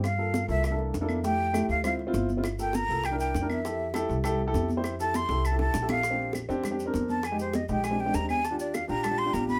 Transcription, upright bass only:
\new Staff \with { instrumentName = "Upright bass" } { \clef bass \time 4/4 \key f \major \tempo 4 = 200 g,4. c,4. f,4~ | f,4. d,4. g,,4~ | g,,4. c,4. f,4~ | f,4. c,4. f,4~ |
f,4. c,4. bes,,4~ | \key bes \major bes,,4. f,4. f,4~ | f,4. bes,,4. ees,4~ | ees,4. bes,,4. a,,4 | }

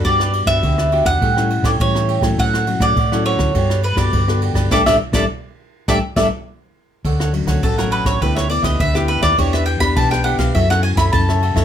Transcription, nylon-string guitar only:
\new Staff \with { instrumentName = "Nylon-string guitar" } { \time 4/4 \key d \major \tempo 4 = 103 << { <b d' fis'>8. <b d' fis'>8. <b d' fis'>8 <g cis' e'>16 <g cis' e'>8. <g cis' e'>8. <fis cis' e'>16~ | <fis cis' e'>8 <fis cis' e'>8 r16 <fis cis' e'>8. <b fis' a'>8 r16 <b fis' a'>8 <b fis' a'>8. | <g a d'>16 <g a d'>16 r16 <g a d'>16 r4 <g a d'>16 r16 <g a d'>16 r4 r16 | r8 <fis a cis'>8. <fis a cis'>8. <b e' a'>8 <b e' a'>8 r16 <b e' a'>8. |
<b d' g'>8. <b d' g'>8. <b d' g'>8 <cis' e' a'>16 <cis' e' a'>8. <cis' e' a'>8 r16 <b ees' a'>16 | } \\ { g4 d4 a,4 e4 | a,4 a,4 g4 d4 | r1 | d4 a,4 d4 d4 |
e4 b,4 fis4 cis4 | } >> }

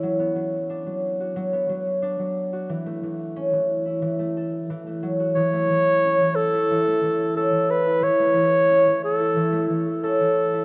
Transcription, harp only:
\new Staff \with { instrumentName = "Harp" } { \time 4/4 \key a \major \tempo 4 = 90 fis16 b16 fis8 d'16 fis8 fis'16 fis16 b16 fis8 d'16 fis8 fis'16 | e16 a16 e8 cis'16 e8 e'16 e16 a16 a'16 r16 e16 a16 fis16 fis'16 | e16 a16 e8 cis'16 e8 e'16 e16 a16 e8 cis'16 e8 e'16 | e16 a16 e8 cis'16 e8 e'16 e16 a16 e8 cis'16 e8 e'16 | }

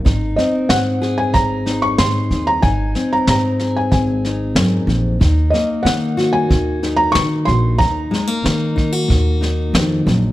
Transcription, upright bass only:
\new Staff \with { instrumentName = "Upright bass" } { \clef bass \time 4/4 \key ees \dorian \tempo 4 = 93 aes,,8 r8 aes,4 aes,,4 aes,8 ees,8 | aes,,8 r8 aes,4 aes,,4 aes,8 bes,,8 | ees,8 r8 ees4 ees,4 ees8 bes,,8 | ees,8 r8 ees4 ees,4 ees8 bes,,8 | }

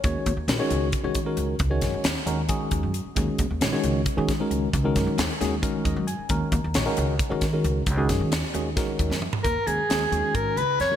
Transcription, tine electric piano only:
\new Staff \with { instrumentName = "Tine electric piano" } { \time 7/8 \key ees \minor \tempo 4 = 134 << { r2. r8 | r2. r8 | r2. r8 | r2 r8 ees''8 aes''8 |
r2. r8 | r2. r8 | r2. r8 | } \\ { <ees aes des' ges' des''>8. r16 <ees aes des' ges' bes'>16 <ees aes des' ges' des''>8. r16 <ees aes des' ges' des''>16 r16 <ees aes des' ges' bes'>8. | r16 <ees aes des' ges' des''>8. r8 <ees aes des' ges' bes'>16 r16 <ees aes des' ges' aes'>4 r8 | <ees aes des' ges' aes'>8. r16 <ees aes des' ges' des''>16 <ees aes des' ges' des''>8. r16 <ees aes des' ges' aes'>16 r16 <ees aes des' ges' bes'>8. | r16 <ees aes des' ges' bes'>8. r8 <ees aes des' ges' aes'>16 r16 <ees aes des' ges' bes'>4 r8 |
<ees aes des' ges' bes'>8. r16 <ees aes des' ges' des''>16 <ees aes des' ges' bes'>8. r16 <ees aes des' ges' bes'>16 r16 <ees aes des' ges' bes'>8. | r16 <ees aes des' ges' aes'>8. r8 <ees aes des' ges' aes'>16 r16 <ees aes des' ges' bes'>4 r8 | r8 <ees aes des' ges' bes'>16 r16 <ees aes des' ges' aes'>16 r16 <ees aes des' ges' aes'>4 r8. <ees aes des' ges' bes'>16 | } >> }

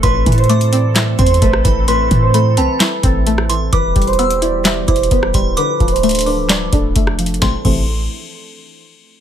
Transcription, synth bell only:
\new Staff \with { instrumentName = "Synth bell" } { \time 4/4 \key a \minor \tempo 4 = 130 c'''4 d'''4. c'''4 b''8 | c'''4 b''8 a''8 r4. c'''8 | d'''4 e'''4. d'''4 c'''8 | d'''4 c'''8 d'''4. r4 |
c'''8 c'''8 r2. | }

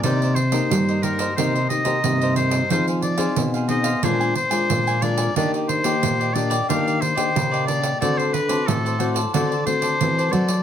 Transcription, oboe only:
\new Staff \with { instrumentName = "Oboe" } { \time 4/4 \key c \minor \tempo 4 = 90 d''8 c''4 bes'8 c''8 ees''4 c''8 | c''8 d''8 r8 ees''8 c''8 c''4 d''8 | d''8 c''4 d''8 f''8 c''4 d''8 | d''16 c''16 b'8 a'8 r8 d''8 c''4 d''8 | }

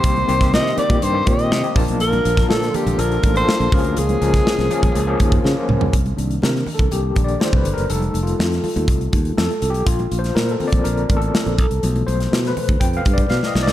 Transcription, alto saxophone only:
\new Staff \with { instrumentName = "Alto saxophone" } { \time 4/4 \key c \dorian \tempo 4 = 122 c''4 ees''8 d''8 c''8 ees''4 r8 | bes'4 a'8 g'8 bes'8. c''8. bes'8 | aes'2.~ aes'8 r8 | r1 |
r1 | r1 | r1 | }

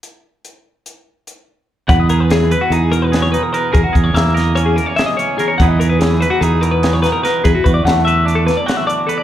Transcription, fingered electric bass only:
\new Staff \with { instrumentName = "Fingered electric bass" } { \clef bass \time 9/8 \key e \lydian \tempo 4. = 97 r1 r8 | e,2 e,2 r8 | e,16 r16 e,8 e,2 r4. | e,2 e,2 r8 |
e,16 r16 e,8 e,2 r4. | }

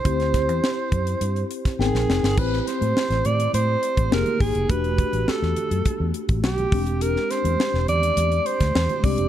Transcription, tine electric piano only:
\new Staff \with { instrumentName = "Tine electric piano" } { \time 4/4 \key e \minor \tempo 4 = 104 <c' e' g' c''>2. <b c' ees' bes' g''>4 | <e' g'>2. <bes ees' g' aes'>4 | <a d' fis' g'>2.~ <a d' fis' g'>8 <gis bis d' g'>8~ | <gis bis d' g'>2.~ <gis bis d' g'>8 <gis bis d' g'>8 | }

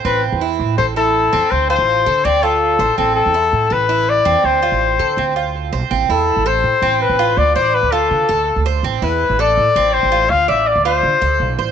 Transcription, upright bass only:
\new Staff \with { instrumentName = "Upright bass" } { \clef bass \time 4/4 \key a \minor \tempo 4 = 164 a,,8. e,8. a,8 a,,4. e,16 r16 | d,8. a,,8. d8 d,4. a,,16 r16 | a,,8. e,8. a,8 a,,4. e,16 r16 | d,8. a,,8. d8 d,4. b,,16 r16 |
a,,8 e,8. a,,8. a,16 r16 a,,8. a,,8. | d,8 a,,8. d,8. d16 r16 d,8. d,8. | a,,8 e,8. a,,8. a,16 r16 a,,8. a,,8. | d,8 a,,8. d,8. d16 r16 d,8 b,,8 a,,8 | }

